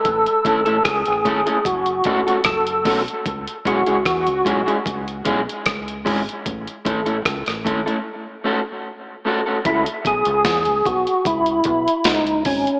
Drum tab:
HH |xxxxxxxxxxxxxxox|xxxxxxxxxxxxxxox|xxxxxxxx--------|xxxxxxxxxxxxxxox|
SD |----r-------r---|----r-------r---|----rr----------|----o-------o---|
BD |o-o-o-o-o-o-o-o-|o-o-o-o-o-o-o-o-|o-o-o-o---------|o-o-o-o-o-o-o-o-|